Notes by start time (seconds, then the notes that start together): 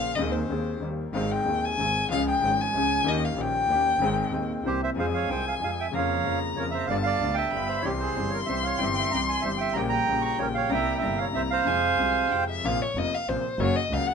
Already playing: A#1 A#2 C#3 F3 A#3 F4 F5
0.15 D#2 D#3 G#3 C4 D#5
0.21 G#4
0.31 C5
0.48 D#2 D#3 G#3 C4 G#4
0.80 D#2 D#3 G3 A#3
0.84 G4
1.13 G#1 G#2 D#3 G#3 C4 G#4 F5
1.32 G5
1.44 D#1 D#2 D#3 G#3 C4
1.48 G#4
1.65 G#5
1.77 G#1 G#2 D#3 G#3 C4 G#4
2.09 C#2 C#3 F3 G#3 C#4 F5
2.13 G#4
2.28 G5
2.41 G#1 G#2 F3 G#3 C#4
2.45 G#4
2.61 G#5
2.73 C#2 C#3 F3 G#3 C#4
2.77 G#4
3.04 D#2 D#3 A#3 C#4
3.08 G4 D#5
3.24 F5
3.35 A#1 A#2 D#3 A#3 C#4
3.40 G4 G5
3.67 D#2 D#3 A#3 C#4
3.72 G4
3.99 G#1 G#2 D#3 G#3 C4
4.03 G#4
4.31 D#1 D#2 D#3 G#3 C4 G#4
4.63 C2 C3 E3 A#3 C4 C5
4.67 G4
4.83 C5 E5
4.95 F2 F3 G#3 C4 F5 G#5
5.00 G#4 C5
5.14 C#5 F5
5.27 C2 C3 F3 G#3 C4 G5
5.32 G#4 C5
5.46 F5 G#5
5.60 F2 F3 G#3 C4 G#4 G#5
5.64 F5
5.79 E5 G5
5.92 F2 C#3 F3 A#3 F5 A#5
5.96 F4 C#5
6.23 F2 C#3 F3 A#3 F4
6.56 F2 C#3 F3 A#3 A#4 C#5
6.60 F4
6.71 C5 E5
6.87 G1 G2 D3 G3 D5 F5 A5
6.91 B3 F4
7.03 D5 F5
7.19 D2 D3 G3 B3
7.24 F4
7.34 E5 G5
7.52 G1 G2 D3 G3 B3 B5
7.56 F4
7.66 C5 E5
7.82 C2 C3 E3 G3 G4 C#5 C6
7.86 C4 G4
7.99 G#4 C5
8.16 G1 G2 E3 G3 C4 G4
8.30 A#4 C#5
8.45 C2 C3 E3 G3 C5 E5
8.49 C4 G4
8.62 F5
8.67 C#5
8.78 G1 G2 E3 G3 G5
8.82 C4 G4 E5
8.94 G5
8.99 E5
9.10 C2 C3 E3 G3 C4 G5 A#5
9.15 G4
9.25 G#5 C6
9.41 G1 G2 E3 G3 C5 E5
9.46 C4 G4
9.57 E5 G5
9.73 A#1 A#2 C#3 G3 A#3 G5 A#5
9.79 G4
9.89 G5 A#5
10.07 A#1 A#2 C#3 G3 A#3
10.11 G4
10.21 A#5 C#6
10.38 A#1 A#2 C#3 G3 A#3 G4 A#4 C#5
10.54 C#5 F5
10.69 C2 C3 G3 A#3 G5 A#5
10.74 E4 E5
10.95 E5 G5
11.01 G1 G2 C3 G3 A#3 A#5
11.05 E4
11.18 C#5 F5
11.33 C2 C3 G3 A#3 E4 C5 E5
11.51 C5 F5
11.64 F2 C3 F3 G#3 G#5
11.69 F4
11.97 C2 C3 F3 G#3 F4
12.29 F2 C3 F3 G#3 G5
12.34 F4
12.50 E5
12.63 A#1 A#2 C3 F3 A#3 F4 F5
12.82 C#5
12.95 F1 F2 C3 F3 A#3 F4 D#5
13.14 F5
13.28 A#1 A#2 C3 F3 A#3 F4 C5
13.59 F#1 F#2 C#3 F#3 A#3 F#4 C#5
13.76 D#5
13.90 C#2 C#3 F#3 A#3 F#4 F5
14.07 F#5